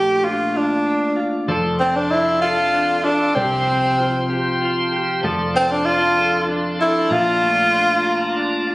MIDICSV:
0, 0, Header, 1, 5, 480
1, 0, Start_track
1, 0, Key_signature, -1, "major"
1, 0, Tempo, 625000
1, 1139, Time_signature, 6, 3, 24, 8
1, 6718, End_track
2, 0, Start_track
2, 0, Title_t, "Tonewheel organ"
2, 0, Program_c, 0, 16
2, 1139, Note_on_c, 0, 81, 62
2, 1140, Note_on_c, 0, 53, 62
2, 1141, Note_on_c, 0, 84, 73
2, 1142, Note_on_c, 0, 74, 60
2, 2561, Note_off_c, 0, 84, 0
2, 2564, Note_off_c, 0, 81, 0
2, 2565, Note_off_c, 0, 74, 0
2, 2570, Note_on_c, 0, 79, 63
2, 2570, Note_on_c, 0, 84, 72
2, 2572, Note_on_c, 0, 72, 62
2, 4000, Note_off_c, 0, 79, 0
2, 4000, Note_off_c, 0, 84, 0
2, 4001, Note_off_c, 0, 72, 0
2, 4016, Note_on_c, 0, 74, 66
2, 4016, Note_on_c, 0, 84, 80
2, 4018, Note_on_c, 0, 81, 61
2, 5429, Note_off_c, 0, 53, 0
2, 5443, Note_off_c, 0, 84, 0
2, 5450, Note_on_c, 0, 82, 71
2, 5458, Note_on_c, 0, 65, 68
2, 6718, Note_off_c, 0, 65, 0
2, 6718, Note_off_c, 0, 74, 0
2, 6718, Note_off_c, 0, 81, 0
2, 6718, Note_off_c, 0, 82, 0
2, 6718, End_track
3, 0, Start_track
3, 0, Title_t, "Tenor saxophone"
3, 0, Program_c, 1, 66
3, 0, Note_on_c, 1, 67, 110
3, 186, Note_on_c, 1, 65, 101
3, 197, Note_off_c, 1, 67, 0
3, 433, Note_on_c, 1, 62, 84
3, 444, Note_off_c, 1, 65, 0
3, 966, Note_off_c, 1, 62, 0
3, 1381, Note_on_c, 1, 60, 91
3, 1503, Note_on_c, 1, 62, 93
3, 1514, Note_off_c, 1, 60, 0
3, 1617, Note_on_c, 1, 64, 107
3, 1629, Note_off_c, 1, 62, 0
3, 1849, Note_off_c, 1, 64, 0
3, 1854, Note_on_c, 1, 65, 108
3, 2333, Note_on_c, 1, 62, 98
3, 2345, Note_off_c, 1, 65, 0
3, 2572, Note_on_c, 1, 60, 92
3, 2584, Note_off_c, 1, 62, 0
3, 3535, Note_off_c, 1, 60, 0
3, 4269, Note_on_c, 1, 60, 99
3, 4387, Note_on_c, 1, 62, 98
3, 4399, Note_off_c, 1, 60, 0
3, 4495, Note_on_c, 1, 65, 114
3, 4506, Note_off_c, 1, 62, 0
3, 4977, Note_off_c, 1, 65, 0
3, 5227, Note_on_c, 1, 64, 102
3, 5465, Note_on_c, 1, 65, 127
3, 5476, Note_off_c, 1, 64, 0
3, 6663, Note_off_c, 1, 65, 0
3, 6718, End_track
4, 0, Start_track
4, 0, Title_t, "Clean electric guitar"
4, 0, Program_c, 2, 27
4, 0, Note_on_c, 2, 46, 81
4, 0, Note_on_c, 2, 53, 84
4, 0, Note_on_c, 2, 57, 66
4, 0, Note_on_c, 2, 62, 63
4, 0, Note_on_c, 2, 65, 75
4, 177, Note_off_c, 2, 62, 0
4, 180, Note_on_c, 2, 62, 61
4, 413, Note_off_c, 2, 65, 0
4, 416, Note_on_c, 2, 65, 66
4, 659, Note_off_c, 2, 62, 0
4, 662, Note_on_c, 2, 62, 56
4, 891, Note_off_c, 2, 65, 0
4, 894, Note_on_c, 2, 65, 65
4, 947, Note_off_c, 2, 53, 0
4, 1137, Note_off_c, 2, 46, 0
4, 1138, Note_on_c, 2, 53, 82
4, 1139, Note_off_c, 2, 65, 0
4, 1142, Note_on_c, 2, 69, 70
4, 1185, Note_off_c, 2, 57, 0
4, 1188, Note_off_c, 2, 62, 0
4, 1376, Note_on_c, 2, 60, 62
4, 1617, Note_on_c, 2, 62, 57
4, 1850, Note_off_c, 2, 69, 0
4, 1859, Note_on_c, 2, 69, 64
4, 2094, Note_off_c, 2, 62, 0
4, 2103, Note_on_c, 2, 62, 62
4, 2339, Note_off_c, 2, 69, 0
4, 2348, Note_on_c, 2, 69, 65
4, 2583, Note_off_c, 2, 69, 0
4, 2588, Note_on_c, 2, 48, 84
4, 2595, Note_on_c, 2, 67, 60
4, 2615, Note_off_c, 2, 53, 0
4, 2629, Note_off_c, 2, 62, 0
4, 2828, Note_off_c, 2, 60, 0
4, 2831, Note_on_c, 2, 60, 65
4, 3061, Note_on_c, 2, 65, 57
4, 3291, Note_off_c, 2, 67, 0
4, 3300, Note_on_c, 2, 67, 65
4, 3542, Note_off_c, 2, 65, 0
4, 3545, Note_on_c, 2, 65, 64
4, 3776, Note_off_c, 2, 67, 0
4, 3785, Note_on_c, 2, 67, 69
4, 4022, Note_off_c, 2, 67, 0
4, 4024, Note_off_c, 2, 48, 0
4, 4026, Note_on_c, 2, 53, 84
4, 4030, Note_on_c, 2, 69, 76
4, 4072, Note_off_c, 2, 60, 0
4, 4259, Note_on_c, 2, 60, 68
4, 4497, Note_off_c, 2, 65, 0
4, 4500, Note_on_c, 2, 62, 63
4, 4737, Note_off_c, 2, 69, 0
4, 4740, Note_on_c, 2, 69, 76
4, 4976, Note_off_c, 2, 62, 0
4, 4979, Note_on_c, 2, 62, 59
4, 5214, Note_off_c, 2, 69, 0
4, 5217, Note_on_c, 2, 69, 67
4, 5454, Note_on_c, 2, 46, 79
4, 5457, Note_off_c, 2, 69, 0
4, 5460, Note_on_c, 2, 65, 61
4, 5507, Note_off_c, 2, 60, 0
4, 5700, Note_on_c, 2, 57, 62
4, 5936, Note_off_c, 2, 62, 0
4, 5939, Note_on_c, 2, 62, 56
4, 6169, Note_off_c, 2, 65, 0
4, 6172, Note_on_c, 2, 65, 69
4, 6420, Note_off_c, 2, 62, 0
4, 6423, Note_on_c, 2, 62, 59
4, 6659, Note_off_c, 2, 65, 0
4, 6662, Note_on_c, 2, 65, 60
4, 6714, Note_off_c, 2, 53, 0
4, 6718, Note_off_c, 2, 46, 0
4, 6718, Note_off_c, 2, 57, 0
4, 6718, Note_off_c, 2, 62, 0
4, 6718, Note_off_c, 2, 65, 0
4, 6718, End_track
5, 0, Start_track
5, 0, Title_t, "Fingered electric bass"
5, 0, Program_c, 3, 33
5, 0, Note_on_c, 3, 34, 105
5, 1107, Note_off_c, 3, 34, 0
5, 1137, Note_on_c, 3, 29, 106
5, 2547, Note_off_c, 3, 29, 0
5, 2583, Note_on_c, 3, 36, 105
5, 3990, Note_off_c, 3, 36, 0
5, 4023, Note_on_c, 3, 29, 104
5, 5430, Note_off_c, 3, 29, 0
5, 5456, Note_on_c, 3, 34, 115
5, 6718, Note_off_c, 3, 34, 0
5, 6718, End_track
0, 0, End_of_file